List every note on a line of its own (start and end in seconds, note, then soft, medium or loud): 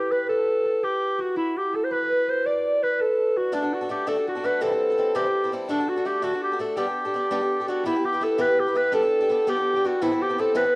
0.00 1.36 E4 medium
0.00 0.13 G4 medium
0.00 0.82 G4 medium
0.00 0.29 A4 medium
0.00 0.11 B4 medium
0.12 1.90 B4 medium
0.12 0.28 B4 medium
0.29 0.86 A4 loud
0.29 0.65 A4 medium
0.65 1.73 A4 medium
0.83 1.24 G4 medium
0.83 1.22 G4 loud
1.18 3.36 F#4 medium
1.18 1.37 F#4 medium
1.36 3.97 E4 loud
1.36 1.59 E4 loud
1.58 1.77 G4 medium
1.73 2.98 A4 medium
1.73 1.86 A4 medium
1.84 1.93 C5 medium
1.91 2.11 B4 medium
1.91 2.31 B4 loud
2.12 2.33 B4 medium
2.27 2.89 C5 medium
2.27 2.47 C5 loud
2.46 2.85 D5 loud
2.46 4.31 D5 loud
2.83 3.02 B4 loud
2.83 4.44 B4 medium
2.99 4.07 A4 medium
2.99 3.39 A4 loud
3.36 3.72 F#4 medium
3.36 3.56 F#4 medium
3.52 3.62 D3 medium
3.52 3.62 A3 medium
3.52 3.63 D4 medium
3.52 5.67 D4 medium
3.52 3.75 D4 loud
3.52 3.62 F#4 medium
3.52 3.61 A4 medium
3.62 3.81 D4 soft
3.62 3.81 F#4 soft
3.62 3.80 A4 medium
3.73 3.96 F#4 medium
3.73 3.90 F#4 medium
3.81 3.89 D4 soft
3.81 3.90 F#4 soft
3.81 3.89 A4 medium
3.89 4.06 A3 medium
3.89 4.06 D4 medium
3.89 4.06 F#4 medium
3.89 4.33 G4 medium
3.89 4.10 G4 medium
3.89 4.06 A4 medium
4.07 4.17 D3 medium
4.07 4.17 A3 medium
4.07 4.17 D4 medium
4.07 4.16 F#4 medium
4.07 4.61 A4 medium
4.07 4.15 A4 medium
4.07 4.27 A4 loud
4.16 4.36 D4 soft
4.16 4.35 F#4 soft
4.16 4.34 A4 soft
4.27 5.21 F#4 medium
4.27 4.47 F#4 medium
4.35 4.43 D4 soft
4.35 4.43 F#4 medium
4.35 4.44 A4 medium
4.43 4.61 A3 medium
4.43 4.61 D4 medium
4.43 4.61 F#4 medium
4.43 4.61 A4 medium
4.43 6.50 B4 medium
4.43 4.63 B4 medium
4.61 4.71 C3 medium
4.61 4.71 E3 medium
4.61 4.71 G3 medium
4.61 4.71 C4 medium
4.61 4.70 E4 medium
4.61 6.58 A4 loud
4.61 5.17 A4 loud
4.61 4.70 A4 medium
4.71 4.90 G3 soft
4.71 4.90 C4 soft
4.71 4.89 E4 medium
4.71 4.89 A4 soft
4.90 4.96 G3 medium
4.90 4.97 C4 soft
4.90 4.98 E4 soft
4.90 4.98 A4 medium
4.97 5.14 G3 soft
4.97 5.14 C4 medium
4.97 5.15 E4 medium
4.97 5.15 A4 medium
5.15 5.25 C3 medium
5.15 5.25 E3 medium
5.15 5.25 G3 medium
5.15 5.25 C4 medium
5.15 5.25 E4 medium
5.15 5.93 G4 medium
5.15 5.52 G4 loud
5.15 5.24 A4 medium
5.25 5.44 G3 soft
5.25 5.44 C4 medium
5.25 5.43 E4 soft
5.25 5.42 A4 medium
5.44 5.51 G3 soft
5.44 5.52 C4 soft
5.44 5.52 E4 medium
5.44 5.52 A4 medium
5.52 5.69 G3 medium
5.52 5.69 C4 medium
5.52 5.69 E4 medium
5.52 5.69 A4 medium
5.68 5.79 D3 medium
5.68 5.79 A3 medium
5.68 8.48 D4 medium
5.68 5.91 D4 loud
5.68 5.79 D4 medium
5.68 5.79 F#4 medium
5.68 5.78 A4 medium
5.79 5.97 D4 soft
5.79 5.96 F#4 soft
5.79 5.95 A4 medium
5.87 6.11 F#4 medium
5.87 6.08 F#4 medium
5.96 6.04 D4 soft
5.96 6.05 F#4 medium
5.96 6.05 A4 soft
6.05 6.21 A3 medium
6.05 6.22 D4 soft
6.05 6.22 F#4 medium
6.05 6.28 G4 medium
6.05 6.25 G4 medium
6.05 6.23 A4 medium
6.22 6.32 D3 medium
6.22 6.32 A3 medium
6.22 6.33 D4 medium
6.22 6.82 F#4 medium
6.22 6.33 F#4 medium
6.22 6.43 F#4 loud
6.22 6.32 A4 medium
6.33 6.52 D4 soft
6.33 6.52 F#4 soft
6.33 6.51 A4 medium
6.43 6.59 G4 medium
6.52 6.59 D4 soft
6.52 6.59 F#4 medium
6.52 6.60 A4 medium
6.58 6.77 A3 medium
6.58 6.76 D4 medium
6.58 6.77 F#4 medium
6.58 8.20 A4 medium
6.58 6.79 A4 medium
6.58 6.77 A4 medium
6.76 6.87 G3 medium
6.76 6.87 B3 medium
6.76 6.87 D4 medium
6.76 7.74 G4 medium
6.76 6.86 G4 medium
6.76 7.68 G4 loud
6.76 6.85 A4 medium
6.87 7.06 D4 soft
6.87 7.05 G4 soft
6.87 7.04 A4 medium
7.05 7.14 D4 soft
7.05 7.14 G4 medium
7.05 7.14 A4 medium
7.14 7.30 B3 medium
7.14 7.31 D4 soft
7.14 7.31 G4 medium
7.14 7.31 A4 medium
7.31 7.41 G3 medium
7.31 7.41 B3 medium
7.31 7.41 D4 medium
7.31 7.40 G4 medium
7.31 7.40 A4 medium
7.41 7.60 G4 soft
7.41 7.59 A4 medium
7.60 7.67 D4 medium
7.60 7.68 G4 medium
7.60 7.68 A4 medium
7.68 7.85 B3 medium
7.68 7.85 D4 medium
7.68 8.10 F#4 medium
7.68 7.84 F#4 medium
7.68 7.85 G4 medium
7.68 7.86 A4 medium
7.83 7.95 E3 medium
7.83 7.95 B3 medium
7.83 10.01 E4 medium
7.83 7.95 E4 medium
7.83 8.07 E4 loud
7.83 7.95 G4 medium
7.83 7.94 B4 medium
7.95 8.14 E4 soft
7.95 8.13 G4 medium
7.95 8.12 B4 medium
8.04 8.59 G4 medium
8.04 8.25 G4 medium
8.13 8.20 E4 medium
8.13 8.21 G4 medium
8.13 8.22 B4 medium
8.20 8.37 B3 medium
8.20 8.38 E4 medium
8.20 8.38 G4 medium
8.20 8.93 A4 medium
8.20 8.43 A4 loud
8.20 8.38 B4 medium
8.38 8.49 E3 medium
8.38 8.49 B3 medium
8.38 8.48 E4 medium
8.38 8.47 G4 medium
8.38 8.75 B4 medium
8.38 8.46 B4 medium
8.38 8.62 B4 loud
8.47 8.67 E4 soft
8.47 8.67 G4 soft
8.47 8.66 B4 soft
8.59 9.46 G4 medium
8.59 8.79 G4 medium
8.67 8.74 E4 soft
8.67 8.74 G4 soft
8.67 8.75 B4 medium
8.75 8.91 B3 medium
8.75 8.92 E4 medium
8.75 8.92 G4 medium
8.75 10.56 B4 medium
8.75 8.93 B4 medium
8.92 9.02 G3 medium
8.92 9.03 B3 medium
8.92 9.03 D4 medium
8.92 9.02 G4 medium
8.92 9.01 A4 medium
8.92 9.07 A4 medium
8.92 9.51 A4 loud
9.02 9.21 D4 soft
9.02 9.20 G4 medium
9.02 9.19 A4 medium
9.07 9.19 A4 medium
9.19 9.29 D4 soft
9.19 9.30 G4 soft
9.19 9.31 A4 medium
9.19 9.30 A4 medium
9.29 9.46 B3 medium
9.29 9.47 D4 medium
9.29 9.47 G4 medium
9.29 10.39 A4 medium
9.29 9.47 A4 medium
9.47 9.57 G3 medium
9.47 9.57 B3 medium
9.47 9.57 D4 medium
9.47 9.60 G4 medium
9.47 9.56 G4 medium
9.47 9.87 G4 loud
9.47 9.55 A4 medium
9.56 9.76 D4 soft
9.56 9.75 G4 soft
9.56 9.74 A4 medium
9.60 9.73 G4 medium
9.73 9.91 G4 loud
9.73 9.84 G4 soft
9.73 9.84 A4 medium
9.77 9.84 D4 soft
9.84 10.01 B3 medium
9.84 10.01 D4 medium
9.84 10.27 F#4 medium
9.84 10.04 F#4 loud
9.84 10.02 G4 medium
9.84 10.01 A4 medium
10.01 10.11 A2 medium
10.01 10.11 E3 medium
10.01 10.11 B3 medium
10.01 10.11 C4 medium
10.01 10.75 E4 medium
10.01 10.11 E4 medium
10.01 10.24 E4 loud
10.01 10.10 A4 medium
10.11 10.30 B3 soft
10.11 10.29 C4 medium
10.11 10.29 E4 medium
10.11 10.28 A4 medium
10.21 10.75 G4 medium
10.21 10.41 G4 loud
10.29 10.37 B3 soft
10.29 10.38 C4 medium
10.29 10.38 E4 medium
10.29 10.38 A4 medium
10.38 10.54 B3 medium
10.38 10.54 C4 medium
10.38 10.54 E4 medium
10.38 10.75 A4 medium
10.38 10.58 A4 loud
10.38 10.55 A4 medium
10.55 10.65 A2 medium
10.55 10.65 E3 medium
10.55 10.65 B3 medium
10.55 10.64 C4 medium
10.55 10.64 E4 medium
10.55 10.63 A4 medium
10.55 10.75 B4 loud
10.64 10.75 B3 soft
10.64 10.75 C4 soft
10.64 10.75 E4 soft
10.64 10.75 A4 medium